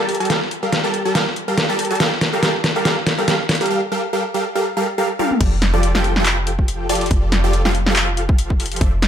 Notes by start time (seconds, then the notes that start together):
0.00 G3 G4 A4 A#4 A5
0.09 open hi-hat
0.15 closed hi-hat
0.20 G3 G4 A4 A#4 A5, closed hi-hat
0.25 closed hi-hat
0.30 G3 G4 A4 A#4 F5, snare, closed hi-hat
0.51 closed hi-hat
0.63 G3 G4 A4 A#4 F5
0.72 snare, closed hi-hat
0.84 G3 G4 A4 A#4 A5
0.94 closed hi-hat
1.05 G3 G4 A4 A#4 A5
1.15 G3 G4 A4 A#4 F5, snare, closed hi-hat
1.36 closed hi-hat
1.48 G3 G4 A4 A#4 F5
1.58 snare, closed hi-hat
1.69 G3 G4 A4 A#4 A5
1.79 open hi-hat
1.85 closed hi-hat
1.91 G3 G4 A4 A#4 A5, closed hi-hat
1.95 closed hi-hat
2.00 G3 G4 A4 A#4 F5, snare, closed hi-hat
2.21 snare, closed hi-hat
2.33 G3 G4 A4 A#4 F5
2.43 G3 G4 A4 A#4 F5, snare, closed hi-hat
2.64 snare, closed hi-hat
2.76 G3 G4 A4 A#4 F5
2.85 G3 G4 A4 A#4 F5, snare, closed hi-hat
3.07 snare, closed hi-hat
3.18 G3 G4 A4 A#4 F5
3.28 G3 G4 A4 A#4 F5, snare, closed hi-hat
3.49 snare, open hi-hat
3.55 closed hi-hat
3.61 G3 G4 A4 A#4 F5, closed hi-hat
3.66 closed hi-hat
3.70 G3 G4 A4 A#4 F5
3.92 G3 G4 A4 A#4 F5
4.13 G3 G4 A4 A#4 F5
4.34 G3 G4 A4 A#4 F5
4.55 G3 G4 A4 A#4 F5
4.77 G3 G4 A4 A#4 F5
4.98 G3 G4 A4 A#4 F5
5.19 G3 G4 A4 A#4 F5, high tom
5.31 mid tom
5.41 F1 F3 F4 G4 A4 D5, kick, closed hi-hat, crash
5.62 snare, closed hi-hat
5.74 F3 F4 G4 A4 D5
5.83 closed hi-hat
5.95 F3 F4 G4 A4 G5, snare
6.04 closed hi-hat
6.16 F3 F4 G4 A4 G5, snare
6.26 clap, closed hi-hat
6.47 closed hi-hat
6.59 kick
6.68 closed hi-hat
6.89 F3 F4 G4 A4 D5, open hi-hat
6.95 closed hi-hat
7.01 closed hi-hat
7.06 closed hi-hat
7.11 F1 F3 F4 A4, kick, closed hi-hat
7.32 snare, closed hi-hat
7.44 F3 F4 G4 A4 D5
7.53 closed hi-hat
7.65 F3 F4 G4 A4 F5, snare
7.75 closed hi-hat
7.86 F3 F4 G4 A4 F5, snare
7.96 clap, closed hi-hat
8.17 closed hi-hat
8.29 kick
8.38 closed hi-hat
8.50 kick
8.60 open hi-hat
8.66 closed hi-hat
8.72 closed hi-hat
8.76 closed hi-hat
8.81 F1 F3 F4 A4 C5 D5 E5, kick, closed hi-hat
9.02 snare, closed hi-hat